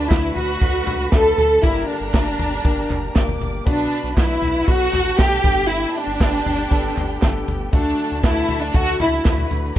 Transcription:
Already playing: grand piano D3 A3 D4 F#4 A4, string section D3 F#3 A3 F#4, violin section B4 B5
0.10 analog synth bass D2, grand piano A3 D4 F#4 B4, violin section E4, kick, snare, clap, closed hi-hat
0.36 analog synth bass D2, violin section F#4, closed hi-hat, floor tom
0.61 analog synth bass D2, grand piano A3 D4 F#4 B4, kick, closed hi-hat
0.87 analog synth bass C#2, clap, closed hi-hat, floor tom
1.12 analog synth bass D2, grand piano A3 D4 F#4 B4, violin section A4, kick, snare, clap, closed hi-hat
1.38 analog synth bass D2, closed hi-hat, floor tom
1.63 analog synth bass G1, grand piano G2 A#3 D4 G4 A4, string section G3 A#3 G4, violin section E4 A#4 A#5, kick, closed hi-hat
1.71 grand piano A#4
1.88 violin section D4, closed hi-hat
2.00 analog synth bass G1
2.14 analog synth bass G1, grand piano A#3 D4 G4 A#4, kick, snare, clap, closed hi-hat
2.38 analog synth bass G1, closed hi-hat, floor tom
2.64 analog synth bass G1, grand piano A#3 D4 G4 A#4, kick, closed hi-hat
2.89 analog synth bass F#1, clap, closed hi-hat, floor tom
3.14 analog synth bass G1, grand piano A#3 D4 G4 A#4, violin section D5 D6, kick, snare, clap, closed hi-hat
3.29 floor tom
3.40 analog synth bass G1, closed hi-hat, floor tom
3.66 analog synth bass B1, grand piano B2 B3 D4 F#4 B4, string section F#3 B3 F#4, violin section D4 B4 B5, kick, closed hi-hat
3.91 closed hi-hat
4.04 analog synth bass B1
4.16 analog synth bass B1, grand piano B3 D4 F#4 B4, violin section E4, kick, snare, clap, closed hi-hat
4.41 analog synth bass B1, closed hi-hat, floor tom
4.68 analog synth bass B1, grand piano B3 D4 F#4 A4, violin section F#4, kick, closed hi-hat
4.92 analog synth bass A1, violin section A4 A5, clap, closed hi-hat, floor tom
5.18 analog synth bass B1, grand piano B3 D4 F#4 A4, violin section G4, kick, snare, clap, closed hi-hat
5.44 analog synth bass G1, grand piano G2 B3 D4 G4 A4, string section A3 B3 G4, violin section G4 G5, kick, closed hi-hat, floor tom
5.69 violin section E4, closed hi-hat
5.94 violin section D4, closed hi-hat
6.07 analog synth bass G1
6.20 analog synth bass G1, grand piano B3 D4 G4 B4, kick, snare, clap, closed hi-hat
6.45 analog synth bass G1, closed hi-hat, floor tom
6.70 analog synth bass G1, grand piano B3 D4 G4 A4, kick, closed hi-hat
6.97 analog synth bass G1, clap, closed hi-hat, floor tom
7.21 analog synth bass G1, grand piano B3 D4 G4 A4, kick, snare, clap, closed hi-hat
7.48 analog synth bass G1, closed hi-hat, floor tom
7.73 analog synth bass D2, string section D3 F#3 F#4, grand piano D3 A3 D4 F#4 A4, violin section D4 A4 A5, kick, closed hi-hat
7.97 closed hi-hat
8.12 analog synth bass D2
8.23 analog synth bass D2, grand piano A3 D4 F#4 B4, violin section E4, kick, snare, clap, closed hi-hat
8.49 analog synth bass D2, closed hi-hat, floor tom
8.62 violin section D4
8.74 analog synth bass D2, grand piano A3 D4 F#4 A4, violin section F#4, kick, closed hi-hat
9.00 analog synth bass C#2, violin section E4, clap, closed hi-hat, floor tom
9.24 analog synth bass D2, grand piano A3 D4 F#4 B4, violin section B4 B5, kick, snare, clap, closed hi-hat
9.38 floor tom
9.51 analog synth bass D2, closed hi-hat, floor tom
9.75 string section A#3 G4, grand piano A#3

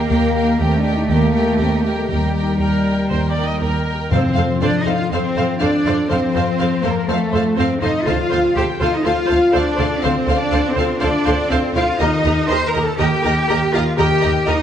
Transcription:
Already playing: harp G3 D#4 G4 D#5, cello section A#3
0.09 double bass section D#2, harp D#3, french horn section A#3, viola section G4, violin section A#4 G5
0.35 viola section G4, violin section A#4 G5
0.43 harp D#4
0.59 double bass section D#2, cello section A3, french horn section C4, harp G4, viola section G4, violin section A#4 G5
0.76 french horn section D4, harp D#5
0.83 viola section G4, violin section A#4 G5
0.92 french horn section D#4, harp G4
1.08 double bass section D#2, harp D#3, french horn section A#3, viola section G4, violin section A#4 G5
1.34 viola section G4, violin section A#4 G5
1.41 harp D#4
1.58 double bass section D#2, french horn section C4, harp G4, viola section G4, violin section A#4 G5
1.75 french horn section A#3, harp D#5
1.84 viola section G4, violin section A#4 G5
1.91 french horn section A3, harp G4
2.07 double bass section D#2, harp D#3, french horn section G3, cello section G3, viola section G4, violin section A#4 G5
2.25 harp A#3
2.35 viola section G4, violin section A#4 G5
2.42 harp D#4
2.59 double bass section D#2, harp G4, violin section A#4 G5, viola section A#4
2.77 harp D#5
2.84 violin section A#4 G5
2.93 harp G4
3.09 double bass section D#2, harp D#3, violin section A#4 G5, viola section C5
3.25 harp A#3, viola section D5
3.37 violin section A#4 G5
3.43 harp D#4, viola section D#5
3.60 double bass section D#2, harp G4, viola section A#4, violin section A#4 G5
3.76 harp D#5
3.86 violin section A#4 G5
3.94 harp G4
4.11 timpani F2, double bass section F2, harp F3, french horn section C4, cello section C4, viola section A4 C5, violin section C5 F5
4.35 double bass section F2, harp F4, viola section A4 C5, violin section F5
4.60 double bass section F2, french horn section D4, cello section D4, viola section A4 C5, harp C5, violin section D5 F5
4.78 french horn section D#4, cello section D#4, violin section D#5
4.86 double bass section F2, harp A4, viola section A4 C5, violin section F5
4.94 french horn section F4, cello section F4, violin section F5
5.11 double bass section F2, harp C4, french horn section C4, cello section C4, viola section A4 C5, violin section C5 F5
5.35 double bass section F2, harp F4, viola section A4 C5, violin section F5
5.60 double bass section F2, french horn section D4, cello section D4, viola section A4 C5, harp C5, violin section D5 F5
5.85 double bass section F2, harp A4, viola section A4 C5, violin section F5
6.09 double bass section F2, harp F3, french horn section C4, cello section C4, viola section A4 C5, violin section C5 F5
6.34 double bass section F2, harp F4, viola section A4 C5, violin section F5
6.59 double bass section F2, viola section A4 C5, harp C5, violin section F5
6.81 double bass section F2, french horn section A#3, cello section A#3, harp A4, viola section A4 C5, violin section A#4 F5
7.05 double bass section F2, french horn section A3, cello section A3, harp C4, viola section A4 C5
7.09 violin section A4 F5
7.33 double bass section F2, harp F4, viola section A4 C5, violin section F5
7.57 double bass section F2, cello section C4, french horn section C4, viola section A4 C5, violin section C5 F5, harp C5
7.81 double bass section F2, french horn section D#4, cello section D#4, harp A4, viola section A4 C5, violin section D#5 F5
8.06 double bass section D2, harp D3, french horn section F4, cello section F4, viola section A4 C5, violin section F5
8.30 double bass section D2, harp C4, viola section A4 C5, violin section F5
8.55 double bass section D2, cello section G4, french horn section G4, viola section A4 C5, harp A4, violin section F5 G5
8.79 double bass section D2, cello section F4, french horn section F4, harp F4, viola section A4 C5, violin section F5
8.84 violin section F5
8.92 cello section D#4, french horn section D#4, violin section D#5
9.04 double bass section D2, harp A3, cello section F4, french horn section F4, viola section A4 C5, violin section F5
9.28 double bass section D2, harp C4, viola section A4 C5, violin section F5
9.52 double bass section D2, cello section D4, french horn section D4, viola section A4 C5, harp A4, violin section D5 F5
9.77 double bass section D2, harp F4, viola section A4 C5, violin section F5
10.03 double bass section D2, harp D3, french horn section C4, cello section C4, viola section A4 C5, violin section C5 F5
10.27 double bass section D2, harp C4, viola section A4 C5, violin section F5
10.36 cello section D4, french horn section D4, violin section D5
10.52 double bass section D2, viola section A4 C5, harp A4, violin section F5
10.68 cello section C4, french horn section C4, violin section C5
10.76 double bass section D2, harp F4, viola section A4 C5, violin section F5
11.01 double bass section D2, harp A3, cello section D4, french horn section D4, viola section A4 C5, violin section D5 F5
11.26 double bass section D2, harp C4, viola section A4 C5, violin section F5
11.51 double bass section D2, cello section C4, french horn section C4, viola section A4 C5, harp A4, violin section C5 F5
11.75 double bass section D2, cello section F4, harp F4, french horn section F4, viola section A4 C5, violin section F5
12.00 double bass section D#2, harp D#3, cello section D#4, french horn section D#4, viola section G4 A#4, violin section D#5 A#5
12.25 double bass section D#2, harp D#4, viola section G4 A#4, violin section D#5 A#5
12.48 double bass section D#2, viola section G4 A#4, harp A#4, cello section C5, french horn section C5, violin section D#5 A#5 C6
12.63 french horn section A#4, cello section A#4, violin section A#5
12.74 double bass section D#2, harp G4, viola section G4 A#4, violin section D#5 A#5
12.81 french horn section A4, cello section A4, violin section A5
12.99 double bass section D#2, harp A#3, french horn section G4, cello section G4, viola section G4 A#4, violin section D#5 G5 A#5
13.24 double bass section D#2, harp D#4, viola section G4 A#4, violin section D#5 A#5
13.49 double bass section D#2, viola section G4 A#4, harp A#4, violin section D#5 A#5
13.73 double bass section D#2, french horn section F4, cello section F4, viola section G4 A#4, harp G4, violin section D#5 F5 A#5
13.96 double bass section D#2, harp D#3, french horn section G4, viola section G4 A#4, cello section G4, violin section D#5 G5 A#5
14.22 double bass section D#2, harp D#4, viola section G4 A#4, violin section D#5 A#5
14.46 double bass section D#2, french horn section D#4, cello section D#4, viola section G4 A#4, harp A#4, violin section D#5 A#5

